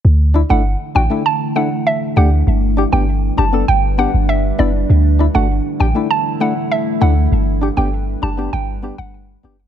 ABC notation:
X:1
M:4/4
L:1/16
Q:1/4=99
K:D
V:1 name="Synth pluck"
z3 f z2 g z a z f z e z f z | z3 g z2 a z g z f z e z d z | z3 f z2 g z a z f z e z f z | z3 g z2 a z g z2 f z4 |]
V:2 name="Synth stab"
z2 [DE] [A,DE] z2 [DF] [A,DE] z2 [A,DE] z3 [A,DG] z | z2 [DG] [B,DG] z2 [DG] [B,DA] z2 [B,DG] z3 [B,DE] z | z2 [DE] [A,DF] z2 [DG] [A,DE] z2 [A,DE] z3 [A,DE] z | z2 [DG] [B,DG] z2 [DG] [B,DG] z2 [B,DG] z3 [B,DG] z |]
V:3 name="Ambient pad"
[D,A,E]16 | [G,DB]16 | [D,A,E]16 | [G,DB]16 |]
V:4 name="808-style bass" clef=bass
D,,3 G,,,2 z A,,, z6 z D,,2 | G,,,3 G,,,3 F,,,2 G,,,3 G,,,3 F,,,2 | D,,3 G,,,2 z A,,, z6 z D,,2 | G,,,3 G,,,3 F,,,2 G,,,3 G,,,3 F,,,2 |]